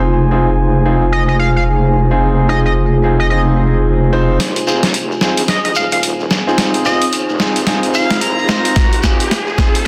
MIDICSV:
0, 0, Header, 1, 9, 480
1, 0, Start_track
1, 0, Key_signature, -4, "minor"
1, 0, Tempo, 545455
1, 34, Time_signature, 4, 2, 24, 8
1, 8691, End_track
2, 0, Start_track
2, 0, Title_t, "Analog synth lead"
2, 0, Program_c, 0, 81
2, 989, Note_on_c, 0, 75, 85
2, 1084, Note_off_c, 0, 75, 0
2, 1129, Note_on_c, 0, 75, 72
2, 1195, Note_off_c, 0, 75, 0
2, 1226, Note_on_c, 0, 77, 91
2, 1323, Note_off_c, 0, 77, 0
2, 1376, Note_on_c, 0, 77, 73
2, 1439, Note_off_c, 0, 77, 0
2, 2192, Note_on_c, 0, 75, 87
2, 2285, Note_off_c, 0, 75, 0
2, 2337, Note_on_c, 0, 75, 71
2, 2399, Note_off_c, 0, 75, 0
2, 2812, Note_on_c, 0, 75, 83
2, 2877, Note_off_c, 0, 75, 0
2, 2906, Note_on_c, 0, 75, 73
2, 3002, Note_off_c, 0, 75, 0
2, 4829, Note_on_c, 0, 75, 86
2, 4924, Note_off_c, 0, 75, 0
2, 4970, Note_on_c, 0, 75, 74
2, 5035, Note_off_c, 0, 75, 0
2, 5072, Note_on_c, 0, 77, 88
2, 5165, Note_off_c, 0, 77, 0
2, 5213, Note_on_c, 0, 77, 77
2, 5277, Note_off_c, 0, 77, 0
2, 6033, Note_on_c, 0, 75, 90
2, 6210, Note_off_c, 0, 75, 0
2, 6993, Note_on_c, 0, 77, 96
2, 7214, Note_off_c, 0, 77, 0
2, 7225, Note_on_c, 0, 82, 92
2, 7911, Note_off_c, 0, 82, 0
2, 8691, End_track
3, 0, Start_track
3, 0, Title_t, "Ambient pad"
3, 0, Program_c, 1, 92
3, 0, Note_on_c, 1, 65, 73
3, 0, Note_on_c, 1, 72, 61
3, 0, Note_on_c, 1, 80, 87
3, 8691, Note_off_c, 1, 65, 0
3, 8691, Note_off_c, 1, 72, 0
3, 8691, Note_off_c, 1, 80, 0
3, 8691, End_track
4, 0, Start_track
4, 0, Title_t, "Ambient pad"
4, 0, Program_c, 2, 92
4, 0, Note_on_c, 2, 63, 77
4, 0, Note_on_c, 2, 65, 70
4, 0, Note_on_c, 2, 68, 84
4, 3838, Note_off_c, 2, 63, 0
4, 3838, Note_off_c, 2, 68, 0
4, 3840, Note_off_c, 2, 65, 0
4, 3870, Note_on_c, 2, 65, 69
4, 3873, Note_on_c, 2, 63, 76
4, 3876, Note_on_c, 2, 68, 83
4, 8691, Note_off_c, 2, 63, 0
4, 8691, Note_off_c, 2, 65, 0
4, 8691, Note_off_c, 2, 68, 0
4, 8691, End_track
5, 0, Start_track
5, 0, Title_t, "Grand piano"
5, 0, Program_c, 3, 0
5, 274, Note_on_c, 3, 60, 67
5, 274, Note_on_c, 3, 68, 73
5, 276, Note_on_c, 3, 63, 61
5, 276, Note_on_c, 3, 65, 64
5, 418, Note_off_c, 3, 60, 0
5, 419, Note_off_c, 3, 63, 0
5, 419, Note_off_c, 3, 65, 0
5, 419, Note_off_c, 3, 68, 0
5, 753, Note_on_c, 3, 60, 68
5, 753, Note_on_c, 3, 63, 61
5, 753, Note_on_c, 3, 68, 79
5, 754, Note_on_c, 3, 65, 63
5, 898, Note_off_c, 3, 60, 0
5, 898, Note_off_c, 3, 63, 0
5, 898, Note_off_c, 3, 65, 0
5, 898, Note_off_c, 3, 68, 0
5, 1855, Note_on_c, 3, 60, 72
5, 1855, Note_on_c, 3, 65, 64
5, 1856, Note_on_c, 3, 63, 66
5, 1856, Note_on_c, 3, 68, 76
5, 2170, Note_off_c, 3, 60, 0
5, 2170, Note_off_c, 3, 63, 0
5, 2170, Note_off_c, 3, 65, 0
5, 2170, Note_off_c, 3, 68, 0
5, 2190, Note_on_c, 3, 63, 75
5, 2190, Note_on_c, 3, 65, 73
5, 2190, Note_on_c, 3, 68, 91
5, 2191, Note_on_c, 3, 60, 81
5, 2336, Note_off_c, 3, 63, 0
5, 2336, Note_off_c, 3, 68, 0
5, 2337, Note_off_c, 3, 60, 0
5, 2337, Note_off_c, 3, 65, 0
5, 2671, Note_on_c, 3, 63, 67
5, 2671, Note_on_c, 3, 65, 70
5, 2672, Note_on_c, 3, 68, 85
5, 2673, Note_on_c, 3, 60, 73
5, 2817, Note_off_c, 3, 63, 0
5, 2817, Note_off_c, 3, 65, 0
5, 2817, Note_off_c, 3, 68, 0
5, 2818, Note_off_c, 3, 60, 0
5, 2914, Note_on_c, 3, 60, 69
5, 2914, Note_on_c, 3, 65, 62
5, 2914, Note_on_c, 3, 68, 73
5, 2915, Note_on_c, 3, 63, 62
5, 3611, Note_off_c, 3, 60, 0
5, 3611, Note_off_c, 3, 65, 0
5, 3611, Note_off_c, 3, 68, 0
5, 3612, Note_off_c, 3, 63, 0
5, 3631, Note_on_c, 3, 60, 90
5, 3631, Note_on_c, 3, 63, 84
5, 3633, Note_on_c, 3, 65, 82
5, 3633, Note_on_c, 3, 72, 98
5, 3835, Note_off_c, 3, 60, 0
5, 3835, Note_off_c, 3, 63, 0
5, 3835, Note_off_c, 3, 72, 0
5, 3836, Note_off_c, 3, 65, 0
5, 4111, Note_on_c, 3, 60, 70
5, 4111, Note_on_c, 3, 63, 63
5, 4111, Note_on_c, 3, 65, 64
5, 4111, Note_on_c, 3, 68, 74
5, 4257, Note_off_c, 3, 60, 0
5, 4257, Note_off_c, 3, 63, 0
5, 4257, Note_off_c, 3, 65, 0
5, 4257, Note_off_c, 3, 68, 0
5, 4592, Note_on_c, 3, 60, 72
5, 4592, Note_on_c, 3, 68, 81
5, 4593, Note_on_c, 3, 63, 64
5, 4593, Note_on_c, 3, 65, 63
5, 4737, Note_off_c, 3, 60, 0
5, 4737, Note_off_c, 3, 68, 0
5, 4738, Note_off_c, 3, 63, 0
5, 4738, Note_off_c, 3, 65, 0
5, 5693, Note_on_c, 3, 65, 68
5, 5694, Note_on_c, 3, 60, 72
5, 5694, Note_on_c, 3, 63, 68
5, 5694, Note_on_c, 3, 68, 80
5, 6009, Note_off_c, 3, 60, 0
5, 6009, Note_off_c, 3, 63, 0
5, 6009, Note_off_c, 3, 65, 0
5, 6009, Note_off_c, 3, 68, 0
5, 6032, Note_on_c, 3, 65, 76
5, 6033, Note_on_c, 3, 60, 82
5, 6033, Note_on_c, 3, 63, 75
5, 6033, Note_on_c, 3, 68, 90
5, 6177, Note_off_c, 3, 65, 0
5, 6178, Note_off_c, 3, 60, 0
5, 6178, Note_off_c, 3, 63, 0
5, 6178, Note_off_c, 3, 68, 0
5, 6512, Note_on_c, 3, 60, 78
5, 6512, Note_on_c, 3, 68, 90
5, 6513, Note_on_c, 3, 63, 73
5, 6513, Note_on_c, 3, 65, 70
5, 6657, Note_off_c, 3, 60, 0
5, 6657, Note_off_c, 3, 68, 0
5, 6658, Note_off_c, 3, 63, 0
5, 6658, Note_off_c, 3, 65, 0
5, 6754, Note_on_c, 3, 63, 66
5, 6754, Note_on_c, 3, 68, 81
5, 6755, Note_on_c, 3, 60, 71
5, 6755, Note_on_c, 3, 65, 66
5, 7451, Note_off_c, 3, 63, 0
5, 7451, Note_off_c, 3, 68, 0
5, 7452, Note_off_c, 3, 60, 0
5, 7452, Note_off_c, 3, 65, 0
5, 7471, Note_on_c, 3, 72, 104
5, 7472, Note_on_c, 3, 63, 86
5, 7472, Note_on_c, 3, 65, 88
5, 7473, Note_on_c, 3, 60, 96
5, 7675, Note_off_c, 3, 60, 0
5, 7675, Note_off_c, 3, 63, 0
5, 7675, Note_off_c, 3, 65, 0
5, 7675, Note_off_c, 3, 72, 0
5, 7954, Note_on_c, 3, 63, 68
5, 7954, Note_on_c, 3, 65, 70
5, 7955, Note_on_c, 3, 60, 72
5, 7955, Note_on_c, 3, 68, 81
5, 8098, Note_off_c, 3, 65, 0
5, 8099, Note_off_c, 3, 60, 0
5, 8099, Note_off_c, 3, 63, 0
5, 8099, Note_off_c, 3, 68, 0
5, 8435, Note_on_c, 3, 60, 73
5, 8435, Note_on_c, 3, 65, 72
5, 8436, Note_on_c, 3, 63, 69
5, 8436, Note_on_c, 3, 68, 84
5, 8579, Note_off_c, 3, 60, 0
5, 8579, Note_off_c, 3, 63, 0
5, 8579, Note_off_c, 3, 65, 0
5, 8579, Note_off_c, 3, 68, 0
5, 8691, End_track
6, 0, Start_track
6, 0, Title_t, "Wobble bass"
6, 0, Program_c, 4, 39
6, 0, Note_on_c, 4, 29, 79
6, 3857, Note_off_c, 4, 29, 0
6, 3871, Note_on_c, 4, 29, 92
6, 4233, Note_off_c, 4, 29, 0
6, 4255, Note_on_c, 4, 29, 92
6, 4577, Note_off_c, 4, 29, 0
6, 4587, Note_on_c, 4, 34, 91
6, 5055, Note_off_c, 4, 34, 0
6, 5067, Note_on_c, 4, 27, 95
6, 5776, Note_off_c, 4, 27, 0
6, 5791, Note_on_c, 4, 29, 92
6, 6153, Note_off_c, 4, 29, 0
6, 6416, Note_on_c, 4, 29, 92
6, 6874, Note_off_c, 4, 29, 0
6, 6896, Note_on_c, 4, 29, 94
6, 7218, Note_off_c, 4, 29, 0
6, 7231, Note_on_c, 4, 29, 90
6, 7697, Note_off_c, 4, 29, 0
6, 7713, Note_on_c, 4, 29, 95
6, 8074, Note_off_c, 4, 29, 0
6, 8097, Note_on_c, 4, 29, 92
6, 8418, Note_off_c, 4, 29, 0
6, 8430, Note_on_c, 4, 34, 96
6, 8691, Note_off_c, 4, 34, 0
6, 8691, End_track
7, 0, Start_track
7, 0, Title_t, "Riser"
7, 0, Program_c, 5, 103
7, 3873, Note_on_c, 5, 60, 72
7, 8691, Note_off_c, 5, 60, 0
7, 8691, End_track
8, 0, Start_track
8, 0, Title_t, "Shekere"
8, 3875, Note_on_c, 9, 82, 46
8, 3963, Note_off_c, 9, 82, 0
8, 4025, Note_on_c, 9, 82, 24
8, 4113, Note_off_c, 9, 82, 0
8, 4116, Note_on_c, 9, 82, 83
8, 4204, Note_off_c, 9, 82, 0
8, 4269, Note_on_c, 9, 82, 37
8, 4354, Note_off_c, 9, 82, 0
8, 4354, Note_on_c, 9, 82, 50
8, 4442, Note_off_c, 9, 82, 0
8, 4499, Note_on_c, 9, 82, 25
8, 4587, Note_off_c, 9, 82, 0
8, 4594, Note_on_c, 9, 82, 86
8, 4682, Note_off_c, 9, 82, 0
8, 4743, Note_on_c, 9, 82, 35
8, 4831, Note_off_c, 9, 82, 0
8, 4831, Note_on_c, 9, 82, 53
8, 4919, Note_off_c, 9, 82, 0
8, 4969, Note_on_c, 9, 82, 25
8, 5057, Note_off_c, 9, 82, 0
8, 5059, Note_on_c, 9, 82, 94
8, 5147, Note_off_c, 9, 82, 0
8, 5204, Note_on_c, 9, 82, 38
8, 5292, Note_off_c, 9, 82, 0
8, 5311, Note_on_c, 9, 82, 46
8, 5399, Note_off_c, 9, 82, 0
8, 5452, Note_on_c, 9, 82, 22
8, 5540, Note_off_c, 9, 82, 0
8, 5552, Note_on_c, 9, 82, 93
8, 5640, Note_off_c, 9, 82, 0
8, 5704, Note_on_c, 9, 82, 38
8, 5792, Note_off_c, 9, 82, 0
8, 5795, Note_on_c, 9, 82, 55
8, 5883, Note_off_c, 9, 82, 0
8, 5930, Note_on_c, 9, 82, 24
8, 6018, Note_off_c, 9, 82, 0
8, 6030, Note_on_c, 9, 82, 95
8, 6118, Note_off_c, 9, 82, 0
8, 6174, Note_on_c, 9, 82, 39
8, 6262, Note_off_c, 9, 82, 0
8, 6270, Note_on_c, 9, 82, 51
8, 6358, Note_off_c, 9, 82, 0
8, 6415, Note_on_c, 9, 82, 26
8, 6503, Note_off_c, 9, 82, 0
8, 6512, Note_on_c, 9, 82, 81
8, 6600, Note_off_c, 9, 82, 0
8, 6654, Note_on_c, 9, 82, 42
8, 6742, Note_off_c, 9, 82, 0
8, 6749, Note_on_c, 9, 82, 50
8, 6837, Note_off_c, 9, 82, 0
8, 6900, Note_on_c, 9, 82, 25
8, 6988, Note_off_c, 9, 82, 0
8, 6989, Note_on_c, 9, 82, 90
8, 7077, Note_off_c, 9, 82, 0
8, 7137, Note_on_c, 9, 82, 41
8, 7225, Note_off_c, 9, 82, 0
8, 7226, Note_on_c, 9, 82, 55
8, 7314, Note_off_c, 9, 82, 0
8, 7374, Note_on_c, 9, 82, 27
8, 7462, Note_off_c, 9, 82, 0
8, 7470, Note_on_c, 9, 82, 83
8, 7558, Note_off_c, 9, 82, 0
8, 7617, Note_on_c, 9, 82, 43
8, 7705, Note_off_c, 9, 82, 0
8, 7710, Note_on_c, 9, 82, 56
8, 7798, Note_off_c, 9, 82, 0
8, 7854, Note_on_c, 9, 82, 25
8, 7942, Note_off_c, 9, 82, 0
8, 7948, Note_on_c, 9, 82, 93
8, 8036, Note_off_c, 9, 82, 0
8, 8092, Note_on_c, 9, 82, 38
8, 8180, Note_off_c, 9, 82, 0
8, 8196, Note_on_c, 9, 82, 53
8, 8284, Note_off_c, 9, 82, 0
8, 8330, Note_on_c, 9, 82, 24
8, 8418, Note_off_c, 9, 82, 0
8, 8434, Note_on_c, 9, 82, 92
8, 8522, Note_off_c, 9, 82, 0
8, 8586, Note_on_c, 9, 82, 37
8, 8674, Note_off_c, 9, 82, 0
8, 8691, End_track
9, 0, Start_track
9, 0, Title_t, "Drums"
9, 3871, Note_on_c, 9, 38, 44
9, 3871, Note_on_c, 9, 42, 65
9, 3959, Note_off_c, 9, 38, 0
9, 3959, Note_off_c, 9, 42, 0
9, 4015, Note_on_c, 9, 42, 36
9, 4103, Note_off_c, 9, 42, 0
9, 4251, Note_on_c, 9, 38, 41
9, 4251, Note_on_c, 9, 42, 50
9, 4339, Note_off_c, 9, 38, 0
9, 4339, Note_off_c, 9, 42, 0
9, 4348, Note_on_c, 9, 42, 63
9, 4436, Note_off_c, 9, 42, 0
9, 4586, Note_on_c, 9, 38, 48
9, 4674, Note_off_c, 9, 38, 0
9, 4729, Note_on_c, 9, 42, 50
9, 4817, Note_off_c, 9, 42, 0
9, 4824, Note_on_c, 9, 38, 50
9, 4824, Note_on_c, 9, 42, 61
9, 4912, Note_off_c, 9, 38, 0
9, 4912, Note_off_c, 9, 42, 0
9, 4971, Note_on_c, 9, 42, 36
9, 5059, Note_off_c, 9, 42, 0
9, 5212, Note_on_c, 9, 42, 52
9, 5300, Note_off_c, 9, 42, 0
9, 5307, Note_on_c, 9, 42, 65
9, 5395, Note_off_c, 9, 42, 0
9, 5550, Note_on_c, 9, 38, 52
9, 5638, Note_off_c, 9, 38, 0
9, 5790, Note_on_c, 9, 38, 56
9, 5790, Note_on_c, 9, 42, 63
9, 5878, Note_off_c, 9, 38, 0
9, 5878, Note_off_c, 9, 42, 0
9, 5933, Note_on_c, 9, 42, 36
9, 6021, Note_off_c, 9, 42, 0
9, 6174, Note_on_c, 9, 42, 53
9, 6262, Note_off_c, 9, 42, 0
9, 6272, Note_on_c, 9, 42, 65
9, 6360, Note_off_c, 9, 42, 0
9, 6510, Note_on_c, 9, 38, 65
9, 6598, Note_off_c, 9, 38, 0
9, 6653, Note_on_c, 9, 42, 52
9, 6741, Note_off_c, 9, 42, 0
9, 6747, Note_on_c, 9, 38, 60
9, 6747, Note_on_c, 9, 42, 64
9, 6835, Note_off_c, 9, 38, 0
9, 6835, Note_off_c, 9, 42, 0
9, 6892, Note_on_c, 9, 42, 37
9, 6980, Note_off_c, 9, 42, 0
9, 7133, Note_on_c, 9, 38, 58
9, 7133, Note_on_c, 9, 42, 54
9, 7221, Note_off_c, 9, 38, 0
9, 7221, Note_off_c, 9, 42, 0
9, 7228, Note_on_c, 9, 42, 68
9, 7316, Note_off_c, 9, 42, 0
9, 7469, Note_on_c, 9, 38, 69
9, 7557, Note_off_c, 9, 38, 0
9, 7613, Note_on_c, 9, 42, 53
9, 7701, Note_off_c, 9, 42, 0
9, 7709, Note_on_c, 9, 38, 71
9, 7709, Note_on_c, 9, 42, 67
9, 7712, Note_on_c, 9, 36, 119
9, 7797, Note_off_c, 9, 38, 0
9, 7797, Note_off_c, 9, 42, 0
9, 7800, Note_off_c, 9, 36, 0
9, 7856, Note_on_c, 9, 42, 38
9, 7944, Note_off_c, 9, 42, 0
9, 7951, Note_on_c, 9, 36, 63
9, 7952, Note_on_c, 9, 38, 71
9, 8039, Note_off_c, 9, 36, 0
9, 8040, Note_off_c, 9, 38, 0
9, 8098, Note_on_c, 9, 42, 53
9, 8186, Note_off_c, 9, 42, 0
9, 8195, Note_on_c, 9, 38, 73
9, 8195, Note_on_c, 9, 42, 67
9, 8283, Note_off_c, 9, 38, 0
9, 8283, Note_off_c, 9, 42, 0
9, 8431, Note_on_c, 9, 36, 109
9, 8435, Note_on_c, 9, 38, 80
9, 8519, Note_off_c, 9, 36, 0
9, 8523, Note_off_c, 9, 38, 0
9, 8580, Note_on_c, 9, 42, 53
9, 8668, Note_off_c, 9, 42, 0
9, 8691, End_track
0, 0, End_of_file